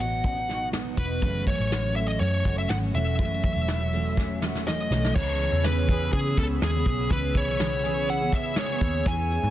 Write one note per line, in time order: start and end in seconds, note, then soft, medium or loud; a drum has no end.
0.00 0.94 A1 medium
0.00 1.23 B2 medium
0.00 0.48 F#3 medium
0.00 0.48 B3 medium
0.00 0.97 B3 medium
0.00 0.25 D#4 medium
0.00 0.48 D#4 medium
0.00 0.49 F#4 medium
0.00 0.50 F#4 medium
0.00 0.68 F#5 medium
0.00 closed hi-hat medium
0.24 0.38 C#4 medium
0.24 kick medium
0.24 closed hi-hat medium
0.38 0.73 D#4 soft
0.48 0.70 F#3 medium
0.48 0.72 B3 medium
0.48 0.73 D#4 medium
0.48 1.72 F#4 medium
0.48 0.73 F#4 medium
0.48 snare soft
0.48 closed hi-hat medium
0.72 0.96 F#3 medium
0.72 0.97 B3 medium
0.72 0.97 D#4 medium
0.72 1.28 D#4 medium
0.72 0.99 F#4 medium
0.72 snare medium
0.72 closed hi-hat medium
0.97 1.22 E1 medium
0.97 1.21 F#3 medium
0.97 1.22 B3 medium
0.97 1.28 B3 medium
0.97 1.22 D#4 medium
0.97 1.22 F#4 medium
0.97 1.44 B4 medium
0.97 kick medium
0.97 closed hi-hat medium
1.21 1.54 F#1 loud
1.21 1.46 F#2 medium
1.21 3.18 F#2 medium
1.21 1.46 C#3 medium
1.21 1.44 E3 medium
1.21 1.45 A3 medium
1.21 1.46 C#4 medium
1.21 1.47 F#4 medium
1.21 kick loud
1.21 closed hi-hat medium
1.45 1.95 E3 medium
1.45 1.95 A3 medium
1.45 1.97 C#4 medium
1.45 2.20 C#4 medium
1.45 1.97 F#4 medium
1.45 1.96 C#5 medium
1.45 kick medium
1.45 closed hi-hat medium
1.60 2.18 A1 medium
1.72 2.44 F#4 medium
1.72 snare loud
1.72 closed hi-hat medium
1.95 2.45 E3 medium
1.95 2.94 A3 medium
1.95 2.45 A3 medium
1.95 2.47 C#4 medium
1.95 2.46 F#4 medium
1.95 2.08 E5 medium
1.95 closed hi-hat medium
2.08 2.20 D#5 medium
2.20 2.42 F#2 loud
2.20 2.70 C#4 medium
2.20 2.55 C#5 medium
2.20 closed hi-hat medium
2.45 2.66 F#1 medium
2.45 2.68 E3 medium
2.45 2.69 A3 medium
2.45 2.70 C#4 medium
2.45 3.68 F#4 medium
2.45 2.71 F#4 medium
2.45 kick medium
2.45 closed hi-hat medium
2.58 2.71 E5 medium
2.69 2.91 G#1 medium
2.69 2.93 E3 soft
2.69 2.94 A3 medium
2.69 3.43 C#4 medium
2.69 2.95 C#4 medium
2.69 2.76 F#5 medium
2.69 snare loud
2.69 closed hi-hat medium
2.94 3.19 E1 medium
2.94 3.19 E3 medium
2.94 3.92 A3 medium
2.94 3.19 A3 medium
2.94 3.20 C#4 medium
2.94 3.20 F#4 medium
2.94 4.62 E5 medium
2.94 closed hi-hat medium
3.19 3.50 F#1 loud
3.19 5.15 F#2 medium
3.19 3.44 F#2 medium
3.19 3.44 C#3 medium
3.19 3.42 E3 medium
3.19 3.43 A3 medium
3.19 3.44 C#4 medium
3.19 3.45 F#4 medium
3.19 kick loud
3.19 closed hi-hat medium
3.43 3.92 E3 medium
3.43 3.93 A3 medium
3.43 4.19 C#4 medium
3.43 3.94 C#4 medium
3.43 3.94 F#4 medium
3.43 kick medium
3.43 closed hi-hat medium
3.56 4.87 E1 medium
3.68 3.81 E4 medium
3.68 snare loud
3.68 closed hi-hat loud
3.81 4.42 F#4 medium
3.92 4.41 E3 medium
3.92 4.91 A3 medium
3.92 4.42 A3 medium
3.92 4.44 C#4 medium
3.92 4.43 F#4 medium
3.92 closed hi-hat medium
4.17 4.67 C#4 medium
4.17 kick medium
4.17 snare medium
4.42 4.64 E3 medium
4.42 4.65 A3 medium
4.42 4.67 C#4 medium
4.42 5.20 F#4 medium
4.42 4.67 F#4 medium
4.42 snare medium
4.55 snare medium
4.65 4.88 E3 medium
4.65 4.90 A3 medium
4.65 5.41 C#4 medium
4.65 4.91 C#4 medium
4.65 4.92 F#4 medium
4.65 5.15 D#5 medium
4.65 snare medium
4.90 5.11 B1 medium
4.90 5.12 E3 medium
4.90 5.15 A3 medium
4.90 5.21 A3 medium
4.90 5.15 C#4 medium
4.90 5.16 F#4 medium
4.90 snare medium
5.04 snare medium
5.14 5.47 C#2 loud
5.14 7.10 C#3 medium
5.14 5.63 E3 medium
5.14 5.64 B3 medium
5.14 5.65 C#4 medium
5.14 5.66 G#4 medium
5.14 9.50 C#5 medium
5.14 5.66 C#5 medium
5.14 9.03 B5 medium
5.14 9.50 E6 medium
5.14 kick loud
5.14 crash loud
5.40 6.13 C#4 medium
5.40 closed hi-hat medium
5.52 6.10 E2 medium
5.63 5.85 E3 medium
5.63 5.87 B3 medium
5.63 6.37 B3 medium
5.63 5.88 C#4 medium
5.63 5.89 G#4 medium
5.63 6.12 B4 medium
5.63 snare loud
5.63 closed hi-hat loud
5.86 6.24 E3 medium
5.86 6.25 B3 medium
5.86 6.25 C#4 medium
5.86 6.62 G#4 medium
5.86 6.23 G#4 medium
5.86 kick medium
5.86 closed hi-hat medium
6.13 6.34 C#3 loud
6.13 7.34 C#4 medium
6.13 6.38 G#4 medium
6.13 kick medium
6.13 closed hi-hat medium
6.25 6.76 B3 soft
6.25 6.75 C#4 medium
6.25 6.73 G#4 medium
6.37 6.58 C#2 loud
6.37 6.86 B3 medium
6.37 6.45 A4 medium
6.37 kick medium
6.37 snare soft
6.37 closed hi-hat medium
6.62 6.83 D#2 loud
6.62 7.83 G#4 medium
6.62 7.12 G#4 medium
6.62 snare loud
6.62 closed hi-hat loud
6.73 7.10 B3 soft
6.73 7.11 C#4 medium
6.73 7.10 G#4 medium
6.86 7.07 B1 medium
6.86 7.59 B3 medium
6.86 kick medium
6.86 closed hi-hat medium
7.10 7.48 C#2 loud
7.10 9.06 C#3 medium
7.10 7.59 E3 medium
7.10 7.60 B3 medium
7.10 7.61 C#4 medium
7.10 7.62 G#4 medium
7.10 7.37 B4 medium
7.10 kick loud
7.10 closed hi-hat medium
7.34 8.08 C#4 medium
7.34 8.12 C#5 loud
7.34 kick medium
7.34 closed hi-hat medium
7.48 8.78 B1 loud
7.59 7.84 E3 medium
7.59 8.33 B3 medium
7.59 7.84 B3 medium
7.59 7.85 C#4 medium
7.59 7.85 G#4 medium
7.59 snare loud
7.59 closed hi-hat loud
7.84 8.21 E3 medium
7.84 8.21 B3 medium
7.84 8.21 C#4 medium
7.84 8.58 G#4 medium
7.84 8.20 G#4 medium
7.84 closed hi-hat medium
8.08 9.31 C#4 medium
8.08 8.34 F#5 loud
8.08 closed hi-hat medium
8.21 8.73 B3 soft
8.21 8.72 C#4 soft
8.21 8.70 G#4 medium
8.32 8.82 B3 medium
8.32 8.58 E5 medium
8.32 kick loud
8.32 snare soft
8.32 closed hi-hat medium
8.56 9.31 G#4 medium
8.56 9.08 C#5 medium
8.56 snare loud
8.56 closed hi-hat loud
8.70 9.07 B3 soft
8.70 9.07 C#4 soft
8.70 9.07 G#4 medium
8.81 9.02 D#2 medium
8.81 9.50 B3 medium
8.81 kick medium
8.81 closed hi-hat medium
9.06 9.37 E2 loud
9.06 9.50 E3 loud
9.06 9.50 E3 medium
9.06 9.50 B3 medium
9.06 9.50 C#4 medium
9.06 9.50 G#5 medium
9.06 9.50 G#5 loud
9.06 kick loud
9.06 closed hi-hat medium
9.10 9.50 G#4 medium
9.30 9.50 G#4 medium
9.30 closed hi-hat medium
9.43 9.50 G#2 loud